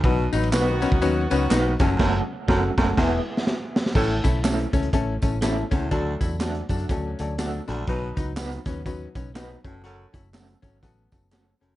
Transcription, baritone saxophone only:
X:1
M:4/4
L:1/8
Q:"Swing" 1/4=122
K:A
V:1 name="Baritone saxophone" clef=bass
B,, z6 E,, | F,, z F,, F,, E,, z3 | A,, z6 E,, | D,, z6 D,, |
B,, z6 A,, | F,, z6 F,, |]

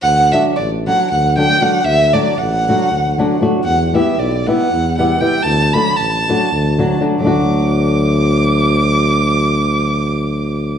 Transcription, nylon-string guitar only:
X:1
M:7/8
L:1/8
Q:1/4=117
K:D
V:1 name="Nylon-string guitar"
z [F,A,DF] z [F,A,DF] z [F,A,DF] [F,A,DF] | z [F,A,DF] z [F,A,DF] z [F,A,DF] [F,A,DF] | z [G,B,EG] z [G,B,EG] z [G,B,EG] [G,B,EG] | z [F,A,DF] z [F,A,DF] z [F,A,DF] [F,A,DF] |
[F,A,DF]6- [F,A,DF]- | [F,A,DF]6- [F,A,DF] |]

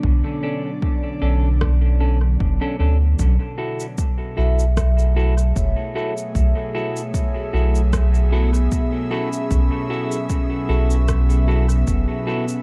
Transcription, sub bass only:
X:1
M:4/4
L:1/8
Q:"Swing 16ths" 1/4=76
K:F#m
V:1 name="Sub bass" clef=bass
B,,, z2 B,,,3 F,,, D,, | B,,, z2 B,,,3 F,,, z | B,,, z2 B,,,3 z2 | B,,, z2 B,,,3 F,,, z |]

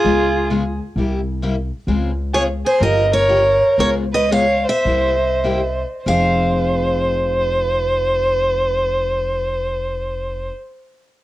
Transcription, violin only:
X:1
M:4/4
L:1/8
Q:"Swing" 1/4=107
K:Fm
V:1 name="Violin"
F2 z6 | z2 A A B B3 | B _c d =c4 z | c8- |
c8 |]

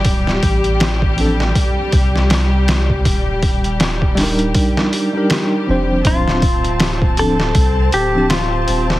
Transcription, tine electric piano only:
X:1
M:4/4
L:1/16
Q:"Swing 16ths" 1/4=80
K:Dphr
V:1 name="Tine electric piano"
z6 [F,CDA] z8 z | z6 [G,DEB]4- [G,DEB] [G,DEB]3 [F,CDc]2- | [F,CDc]2 z4 [F,CDA] z4 [F,CDG] z4 |]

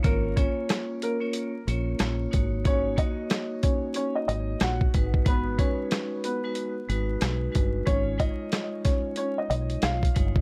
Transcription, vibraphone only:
X:1
M:4/4
L:1/16
Q:"Swing 16ths" 1/4=92
K:G#dor
V:1 name="Vibraphone"
[A,CEc]2 [A,CEc]4- [A,CEc] [A,CEc]2 z [A,CEc]2 [A,CEc]2 [A,DFc]2 | [A,DFc]2 [A,DFc]8- [A,DFc]3 z [G,DFB]2 | [G,DFB]2 [G,DFB]4- [G,DFB] [G,DFB]2 z [G,DFB]2 [G,DFB]2 [G,DFB]2 | [G,DEc]2 [G,DEc]8- [G,DEc]3 z [G,DEc]2 |]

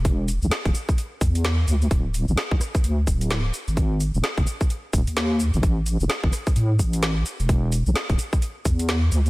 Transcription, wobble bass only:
X:1
M:4/4
L:1/16
Q:"Swing 16ths" 1/4=129
K:Ephr
V:1 name="Wobble bass" clef=bass
E,,,3 B,,, z D,,, z4 E,,4 D,,2 | D,,,3 A,,, z C,, z2 D,,2 D,,,4 z ^G,,,- | ^G,,,3 ^D,,, z ^F,,, z4 D,,, ^D,,4 G,,, | A,,,3 E,,, z G,,, z2 A,,2 A,,,4 z E,,,- |
E,,,3 B,,, z D,,, z4 E,,4 D,,2 |]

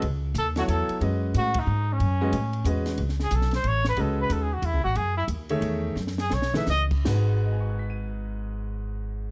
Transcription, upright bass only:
X:1
M:3/4
L:1/8
Q:"Swing" 1/4=183
K:F#dor
V:1 name="Upright bass" clef=bass
C,,2 D,,2 E,, z | F,,2 A,,2 G,,2 | F,,2 A,,2 E,,2 | C,,2 B,,,2 A,,,2 |
C,,2 D,,2 (3E,, C,, A,,, | F,,2 D,,2 E,,2 | F,,2 B,,,2 C,,2 | G,,,6- |
G,,,6 |]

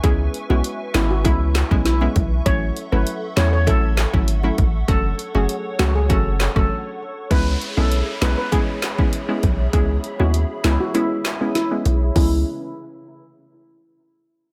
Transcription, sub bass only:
X:1
M:4/4
L:1/16
Q:1/4=99
K:C#m
V:1 name="Sub bass" clef=bass
C,,2 z B,,, z2 G,,,2 C,,3 B,,,3 B,,,2 | A,,,2 z G,,, z2 E,,2 A,,,3 G,,,3 A,,,2 | F,,,2 z F,,, z2 C,,2 F,,,3 F,,, z4 | C,,2 z B,,,2 z B,,, z6 z B,,,2 |
C,,2 z D,,2 z C,, z6 z B,,,2 | C,,2 z12 z2 |]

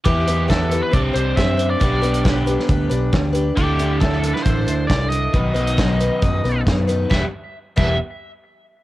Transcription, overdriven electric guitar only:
X:1
M:4/4
L:1/8
Q:1/4=136
K:Em
V:1 name="Overdriven electric guitar"
[E,B,EGB]4 [CDGc]4 | [B,DGB]8 | [D,DEA]8 | [B,,^D,F,B,^DB]8 |
[E,,B,,E,G,B,E] z2 [E,,B,,E,G,B,E] z4 |]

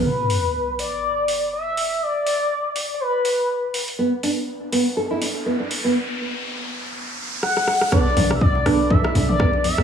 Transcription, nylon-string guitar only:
X:1
M:4/4
L:1/16
Q:"Swing 16ths" 1/4=122
K:Bm
V:1 name="Nylon-string guitar"
z16 | z16 | B, z D z3 B, z A E D z B, D z B, | z16 |
B, z D z3 B, z A E D z B, D z B, |]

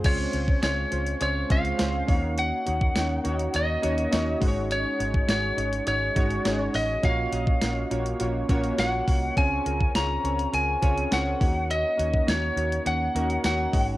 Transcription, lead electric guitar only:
X:1
M:4/4
L:1/16
Q:1/4=103
K:Ebdor
V:1 name="Lead electric guitar"
d4 d4 d2 f6 | g8 e6 z2 | d4 d4 d6 e2 | f12 g4 |
a4 b4 a4 g4 | e4 d4 g4 g3 z |]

